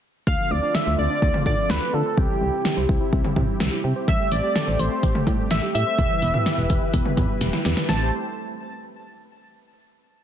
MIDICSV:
0, 0, Header, 1, 6, 480
1, 0, Start_track
1, 0, Key_signature, 0, "minor"
1, 0, Tempo, 476190
1, 272, Time_signature, 4, 2, 24, 8
1, 10320, End_track
2, 0, Start_track
2, 0, Title_t, "Analog synth lead"
2, 0, Program_c, 0, 81
2, 271, Note_on_c, 0, 77, 114
2, 513, Note_on_c, 0, 74, 101
2, 528, Note_off_c, 0, 77, 0
2, 752, Note_on_c, 0, 76, 109
2, 767, Note_off_c, 0, 74, 0
2, 989, Note_off_c, 0, 76, 0
2, 995, Note_on_c, 0, 74, 110
2, 1440, Note_off_c, 0, 74, 0
2, 1474, Note_on_c, 0, 74, 98
2, 1714, Note_on_c, 0, 71, 95
2, 1729, Note_off_c, 0, 74, 0
2, 1954, Note_on_c, 0, 69, 94
2, 1969, Note_off_c, 0, 71, 0
2, 2193, Note_on_c, 0, 67, 92
2, 2208, Note_off_c, 0, 69, 0
2, 3153, Note_off_c, 0, 67, 0
2, 4114, Note_on_c, 0, 76, 116
2, 4337, Note_off_c, 0, 76, 0
2, 4353, Note_on_c, 0, 74, 112
2, 4832, Note_on_c, 0, 72, 91
2, 4847, Note_off_c, 0, 74, 0
2, 5312, Note_off_c, 0, 72, 0
2, 5551, Note_on_c, 0, 76, 107
2, 5660, Note_off_c, 0, 76, 0
2, 5793, Note_on_c, 0, 76, 124
2, 7192, Note_off_c, 0, 76, 0
2, 7951, Note_on_c, 0, 81, 92
2, 8175, Note_off_c, 0, 81, 0
2, 10320, End_track
3, 0, Start_track
3, 0, Title_t, "Analog synth pad"
3, 0, Program_c, 1, 89
3, 272, Note_on_c, 1, 50, 78
3, 272, Note_on_c, 1, 65, 88
3, 273, Note_on_c, 1, 57, 72
3, 273, Note_on_c, 1, 60, 72
3, 2173, Note_off_c, 1, 50, 0
3, 2173, Note_off_c, 1, 57, 0
3, 2173, Note_off_c, 1, 65, 0
3, 2193, Note_on_c, 1, 64, 74
3, 2194, Note_on_c, 1, 48, 79
3, 2194, Note_on_c, 1, 67, 90
3, 4074, Note_off_c, 1, 60, 0
3, 4094, Note_off_c, 1, 48, 0
3, 4094, Note_off_c, 1, 64, 0
3, 4114, Note_on_c, 1, 57, 80
3, 4114, Note_on_c, 1, 60, 74
3, 6014, Note_off_c, 1, 57, 0
3, 6014, Note_off_c, 1, 60, 0
3, 6033, Note_on_c, 1, 52, 80
3, 6033, Note_on_c, 1, 71, 89
3, 6034, Note_on_c, 1, 64, 75
3, 7913, Note_off_c, 1, 67, 0
3, 7934, Note_off_c, 1, 52, 0
3, 7934, Note_off_c, 1, 64, 0
3, 7934, Note_off_c, 1, 71, 0
3, 7953, Note_on_c, 1, 57, 71
3, 7953, Note_on_c, 1, 64, 67
3, 7953, Note_on_c, 1, 67, 65
3, 7953, Note_on_c, 1, 72, 79
3, 8176, Note_off_c, 1, 57, 0
3, 8176, Note_off_c, 1, 64, 0
3, 8176, Note_off_c, 1, 67, 0
3, 8176, Note_off_c, 1, 72, 0
3, 10320, End_track
4, 0, Start_track
4, 0, Title_t, "Synth pluck"
4, 0, Program_c, 2, 84
4, 271, Note_on_c, 2, 50, 97
4, 355, Note_off_c, 2, 50, 0
4, 392, Note_on_c, 2, 53, 68
4, 475, Note_off_c, 2, 53, 0
4, 511, Note_on_c, 2, 60, 82
4, 595, Note_off_c, 2, 60, 0
4, 633, Note_on_c, 2, 62, 76
4, 715, Note_off_c, 2, 62, 0
4, 752, Note_on_c, 2, 65, 94
4, 835, Note_off_c, 2, 65, 0
4, 871, Note_on_c, 2, 72, 83
4, 954, Note_off_c, 2, 72, 0
4, 1111, Note_on_c, 2, 62, 77
4, 1195, Note_off_c, 2, 62, 0
4, 1232, Note_on_c, 2, 60, 97
4, 1315, Note_off_c, 2, 60, 0
4, 1352, Note_on_c, 2, 53, 72
4, 1435, Note_off_c, 2, 53, 0
4, 1472, Note_on_c, 2, 50, 76
4, 1555, Note_off_c, 2, 50, 0
4, 1592, Note_on_c, 2, 53, 69
4, 1675, Note_off_c, 2, 53, 0
4, 1833, Note_on_c, 2, 62, 80
4, 1916, Note_off_c, 2, 62, 0
4, 1952, Note_on_c, 2, 65, 89
4, 2035, Note_off_c, 2, 65, 0
4, 2073, Note_on_c, 2, 72, 84
4, 2156, Note_off_c, 2, 72, 0
4, 2192, Note_on_c, 2, 52, 95
4, 2275, Note_off_c, 2, 52, 0
4, 2312, Note_on_c, 2, 55, 71
4, 2395, Note_off_c, 2, 55, 0
4, 2432, Note_on_c, 2, 60, 81
4, 2515, Note_off_c, 2, 60, 0
4, 2552, Note_on_c, 2, 64, 80
4, 2635, Note_off_c, 2, 64, 0
4, 2672, Note_on_c, 2, 67, 92
4, 2755, Note_off_c, 2, 67, 0
4, 2792, Note_on_c, 2, 72, 82
4, 2875, Note_off_c, 2, 72, 0
4, 3031, Note_on_c, 2, 64, 79
4, 3115, Note_off_c, 2, 64, 0
4, 3152, Note_on_c, 2, 60, 95
4, 3235, Note_off_c, 2, 60, 0
4, 3272, Note_on_c, 2, 55, 73
4, 3355, Note_off_c, 2, 55, 0
4, 3392, Note_on_c, 2, 52, 78
4, 3475, Note_off_c, 2, 52, 0
4, 3511, Note_on_c, 2, 55, 73
4, 3595, Note_off_c, 2, 55, 0
4, 3752, Note_on_c, 2, 64, 75
4, 3835, Note_off_c, 2, 64, 0
4, 3872, Note_on_c, 2, 67, 92
4, 3955, Note_off_c, 2, 67, 0
4, 3991, Note_on_c, 2, 72, 84
4, 4075, Note_off_c, 2, 72, 0
4, 4113, Note_on_c, 2, 55, 94
4, 4196, Note_off_c, 2, 55, 0
4, 4233, Note_on_c, 2, 57, 72
4, 4316, Note_off_c, 2, 57, 0
4, 4352, Note_on_c, 2, 60, 79
4, 4435, Note_off_c, 2, 60, 0
4, 4472, Note_on_c, 2, 67, 80
4, 4555, Note_off_c, 2, 67, 0
4, 4592, Note_on_c, 2, 69, 97
4, 4675, Note_off_c, 2, 69, 0
4, 4713, Note_on_c, 2, 72, 88
4, 4796, Note_off_c, 2, 72, 0
4, 4952, Note_on_c, 2, 67, 77
4, 5035, Note_off_c, 2, 67, 0
4, 5072, Note_on_c, 2, 60, 92
4, 5156, Note_off_c, 2, 60, 0
4, 5192, Note_on_c, 2, 57, 73
4, 5275, Note_off_c, 2, 57, 0
4, 5312, Note_on_c, 2, 55, 77
4, 5395, Note_off_c, 2, 55, 0
4, 5431, Note_on_c, 2, 57, 71
4, 5514, Note_off_c, 2, 57, 0
4, 5673, Note_on_c, 2, 67, 80
4, 5756, Note_off_c, 2, 67, 0
4, 5793, Note_on_c, 2, 69, 88
4, 5876, Note_off_c, 2, 69, 0
4, 5914, Note_on_c, 2, 72, 83
4, 5996, Note_off_c, 2, 72, 0
4, 6033, Note_on_c, 2, 52, 94
4, 6116, Note_off_c, 2, 52, 0
4, 6153, Note_on_c, 2, 55, 72
4, 6236, Note_off_c, 2, 55, 0
4, 6274, Note_on_c, 2, 59, 78
4, 6357, Note_off_c, 2, 59, 0
4, 6395, Note_on_c, 2, 64, 81
4, 6477, Note_off_c, 2, 64, 0
4, 6516, Note_on_c, 2, 67, 95
4, 6597, Note_off_c, 2, 67, 0
4, 6636, Note_on_c, 2, 71, 86
4, 6718, Note_off_c, 2, 71, 0
4, 6876, Note_on_c, 2, 64, 79
4, 6958, Note_off_c, 2, 64, 0
4, 6996, Note_on_c, 2, 59, 92
4, 7077, Note_off_c, 2, 59, 0
4, 7114, Note_on_c, 2, 55, 75
4, 7197, Note_off_c, 2, 55, 0
4, 7234, Note_on_c, 2, 52, 79
4, 7317, Note_off_c, 2, 52, 0
4, 7353, Note_on_c, 2, 55, 72
4, 7436, Note_off_c, 2, 55, 0
4, 7594, Note_on_c, 2, 64, 78
4, 7676, Note_off_c, 2, 64, 0
4, 7713, Note_on_c, 2, 67, 88
4, 7796, Note_off_c, 2, 67, 0
4, 7834, Note_on_c, 2, 71, 85
4, 7917, Note_off_c, 2, 71, 0
4, 7954, Note_on_c, 2, 55, 85
4, 7954, Note_on_c, 2, 57, 79
4, 7954, Note_on_c, 2, 60, 96
4, 8176, Note_off_c, 2, 57, 0
4, 8177, Note_off_c, 2, 55, 0
4, 8177, Note_off_c, 2, 60, 0
4, 10320, End_track
5, 0, Start_track
5, 0, Title_t, "FM bass"
5, 0, Program_c, 3, 39
5, 273, Note_on_c, 3, 38, 113
5, 364, Note_off_c, 3, 38, 0
5, 513, Note_on_c, 3, 38, 101
5, 604, Note_off_c, 3, 38, 0
5, 874, Note_on_c, 3, 38, 90
5, 964, Note_off_c, 3, 38, 0
5, 994, Note_on_c, 3, 38, 96
5, 1085, Note_off_c, 3, 38, 0
5, 1232, Note_on_c, 3, 38, 109
5, 1323, Note_off_c, 3, 38, 0
5, 1471, Note_on_c, 3, 50, 97
5, 1563, Note_off_c, 3, 50, 0
5, 1711, Note_on_c, 3, 38, 95
5, 1803, Note_off_c, 3, 38, 0
5, 1951, Note_on_c, 3, 50, 103
5, 2043, Note_off_c, 3, 50, 0
5, 2193, Note_on_c, 3, 36, 108
5, 2284, Note_off_c, 3, 36, 0
5, 2431, Note_on_c, 3, 36, 98
5, 2523, Note_off_c, 3, 36, 0
5, 2791, Note_on_c, 3, 36, 84
5, 2883, Note_off_c, 3, 36, 0
5, 2914, Note_on_c, 3, 36, 98
5, 3005, Note_off_c, 3, 36, 0
5, 3152, Note_on_c, 3, 36, 115
5, 3243, Note_off_c, 3, 36, 0
5, 3391, Note_on_c, 3, 48, 100
5, 3483, Note_off_c, 3, 48, 0
5, 3634, Note_on_c, 3, 36, 101
5, 3724, Note_off_c, 3, 36, 0
5, 3872, Note_on_c, 3, 48, 99
5, 3963, Note_off_c, 3, 48, 0
5, 4113, Note_on_c, 3, 33, 104
5, 4204, Note_off_c, 3, 33, 0
5, 4353, Note_on_c, 3, 33, 96
5, 4444, Note_off_c, 3, 33, 0
5, 4713, Note_on_c, 3, 33, 92
5, 4804, Note_off_c, 3, 33, 0
5, 4833, Note_on_c, 3, 33, 101
5, 4924, Note_off_c, 3, 33, 0
5, 5072, Note_on_c, 3, 33, 102
5, 5163, Note_off_c, 3, 33, 0
5, 5311, Note_on_c, 3, 45, 100
5, 5403, Note_off_c, 3, 45, 0
5, 5554, Note_on_c, 3, 33, 100
5, 5645, Note_off_c, 3, 33, 0
5, 5793, Note_on_c, 3, 45, 92
5, 5884, Note_off_c, 3, 45, 0
5, 6033, Note_on_c, 3, 28, 115
5, 6124, Note_off_c, 3, 28, 0
5, 6274, Note_on_c, 3, 28, 104
5, 6365, Note_off_c, 3, 28, 0
5, 6633, Note_on_c, 3, 28, 103
5, 6724, Note_off_c, 3, 28, 0
5, 6754, Note_on_c, 3, 28, 98
5, 6844, Note_off_c, 3, 28, 0
5, 6992, Note_on_c, 3, 28, 108
5, 7083, Note_off_c, 3, 28, 0
5, 7231, Note_on_c, 3, 40, 96
5, 7323, Note_off_c, 3, 40, 0
5, 7472, Note_on_c, 3, 28, 100
5, 7563, Note_off_c, 3, 28, 0
5, 7713, Note_on_c, 3, 40, 98
5, 7804, Note_off_c, 3, 40, 0
5, 7952, Note_on_c, 3, 33, 105
5, 8175, Note_off_c, 3, 33, 0
5, 10320, End_track
6, 0, Start_track
6, 0, Title_t, "Drums"
6, 272, Note_on_c, 9, 36, 107
6, 373, Note_off_c, 9, 36, 0
6, 752, Note_on_c, 9, 38, 103
6, 853, Note_off_c, 9, 38, 0
6, 1232, Note_on_c, 9, 36, 92
6, 1333, Note_off_c, 9, 36, 0
6, 1352, Note_on_c, 9, 47, 85
6, 1452, Note_off_c, 9, 47, 0
6, 1470, Note_on_c, 9, 45, 92
6, 1471, Note_on_c, 9, 36, 91
6, 1571, Note_off_c, 9, 45, 0
6, 1572, Note_off_c, 9, 36, 0
6, 1712, Note_on_c, 9, 38, 111
6, 1813, Note_off_c, 9, 38, 0
6, 2192, Note_on_c, 9, 36, 112
6, 2293, Note_off_c, 9, 36, 0
6, 2672, Note_on_c, 9, 38, 105
6, 2773, Note_off_c, 9, 38, 0
6, 2914, Note_on_c, 9, 36, 93
6, 3015, Note_off_c, 9, 36, 0
6, 3152, Note_on_c, 9, 36, 88
6, 3253, Note_off_c, 9, 36, 0
6, 3271, Note_on_c, 9, 47, 89
6, 3372, Note_off_c, 9, 47, 0
6, 3390, Note_on_c, 9, 45, 98
6, 3391, Note_on_c, 9, 36, 90
6, 3491, Note_off_c, 9, 36, 0
6, 3491, Note_off_c, 9, 45, 0
6, 3632, Note_on_c, 9, 38, 121
6, 3732, Note_off_c, 9, 38, 0
6, 4112, Note_on_c, 9, 36, 111
6, 4113, Note_on_c, 9, 42, 71
6, 4213, Note_off_c, 9, 36, 0
6, 4214, Note_off_c, 9, 42, 0
6, 4350, Note_on_c, 9, 42, 76
6, 4451, Note_off_c, 9, 42, 0
6, 4592, Note_on_c, 9, 38, 107
6, 4593, Note_on_c, 9, 42, 67
6, 4693, Note_off_c, 9, 38, 0
6, 4694, Note_off_c, 9, 42, 0
6, 4832, Note_on_c, 9, 42, 85
6, 4933, Note_off_c, 9, 42, 0
6, 5072, Note_on_c, 9, 36, 93
6, 5072, Note_on_c, 9, 42, 83
6, 5173, Note_off_c, 9, 36, 0
6, 5173, Note_off_c, 9, 42, 0
6, 5192, Note_on_c, 9, 47, 90
6, 5293, Note_off_c, 9, 47, 0
6, 5310, Note_on_c, 9, 45, 100
6, 5311, Note_on_c, 9, 36, 93
6, 5312, Note_on_c, 9, 42, 68
6, 5411, Note_off_c, 9, 45, 0
6, 5412, Note_off_c, 9, 36, 0
6, 5413, Note_off_c, 9, 42, 0
6, 5550, Note_on_c, 9, 42, 77
6, 5552, Note_on_c, 9, 38, 122
6, 5651, Note_off_c, 9, 42, 0
6, 5653, Note_off_c, 9, 38, 0
6, 5797, Note_on_c, 9, 42, 71
6, 5897, Note_off_c, 9, 42, 0
6, 6033, Note_on_c, 9, 36, 111
6, 6034, Note_on_c, 9, 42, 74
6, 6134, Note_off_c, 9, 36, 0
6, 6134, Note_off_c, 9, 42, 0
6, 6272, Note_on_c, 9, 42, 73
6, 6372, Note_off_c, 9, 42, 0
6, 6390, Note_on_c, 9, 45, 85
6, 6491, Note_off_c, 9, 45, 0
6, 6512, Note_on_c, 9, 38, 106
6, 6513, Note_on_c, 9, 42, 71
6, 6613, Note_off_c, 9, 38, 0
6, 6614, Note_off_c, 9, 42, 0
6, 6752, Note_on_c, 9, 42, 85
6, 6754, Note_on_c, 9, 36, 96
6, 6853, Note_off_c, 9, 42, 0
6, 6855, Note_off_c, 9, 36, 0
6, 6991, Note_on_c, 9, 42, 80
6, 6992, Note_on_c, 9, 36, 95
6, 7092, Note_off_c, 9, 42, 0
6, 7093, Note_off_c, 9, 36, 0
6, 7111, Note_on_c, 9, 47, 93
6, 7212, Note_off_c, 9, 47, 0
6, 7230, Note_on_c, 9, 45, 100
6, 7231, Note_on_c, 9, 36, 91
6, 7232, Note_on_c, 9, 42, 70
6, 7331, Note_off_c, 9, 36, 0
6, 7331, Note_off_c, 9, 45, 0
6, 7333, Note_off_c, 9, 42, 0
6, 7469, Note_on_c, 9, 42, 78
6, 7472, Note_on_c, 9, 38, 59
6, 7570, Note_off_c, 9, 42, 0
6, 7573, Note_off_c, 9, 38, 0
6, 7592, Note_on_c, 9, 38, 60
6, 7693, Note_off_c, 9, 38, 0
6, 7712, Note_on_c, 9, 38, 91
6, 7714, Note_on_c, 9, 42, 73
6, 7812, Note_off_c, 9, 38, 0
6, 7815, Note_off_c, 9, 42, 0
6, 7831, Note_on_c, 9, 38, 90
6, 7932, Note_off_c, 9, 38, 0
6, 7951, Note_on_c, 9, 38, 104
6, 8052, Note_off_c, 9, 38, 0
6, 10320, End_track
0, 0, End_of_file